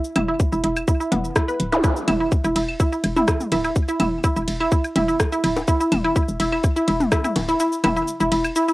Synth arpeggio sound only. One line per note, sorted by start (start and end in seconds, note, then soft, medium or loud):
0.16 0.20 E4 medium
0.28 0.31 E4 medium
0.53 0.56 E4 medium
0.64 0.66 E4 medium
0.88 0.92 E4 medium
1.00 1.02 E4 medium
1.12 1.18 B3 medium
1.36 1.38 E4 medium
1.48 1.54 B4 medium
1.72 1.76 E4 medium
1.84 1.86 E4 medium
2.08 2.14 E4 loud
2.20 2.22 E4 medium
2.44 2.50 E4 loud
2.56 2.58 E4 medium
2.80 2.86 E4 loud
2.92 2.95 E4 medium
3.16 3.22 E4 loud
3.28 3.30 E4 medium
3.52 3.58 E4 loud
3.65 3.67 E4 medium
3.89 3.94 E4 loud
4.00 4.02 E4 medium
4.24 4.30 E4 loud
4.36 4.39 E4 medium
4.60 4.66 E4 loud
4.72 4.74 E4 medium
4.96 5.02 E4 loud
5.08 5.11 E4 medium
5.32 5.38 E4 loud
5.44 5.46 E4 medium
5.68 5.74 E4 loud
5.80 5.83 E4 medium
6.04 6.10 E4 loud
6.16 6.18 E4 medium
6.40 6.46 E4 loud
6.52 6.54 E4 medium
6.76 6.82 E4 loud
6.88 6.90 E4 medium
7.12 7.18 E4 loud
7.24 7.27 E4 medium
7.49 7.54 E4 loud
7.60 7.62 E4 medium
7.84 7.90 E4 loud
7.96 7.99 E4 medium
8.20 8.26 E4 loud
8.32 8.34 E4 medium
8.56 8.62 E4 loud
8.68 8.71 E4 medium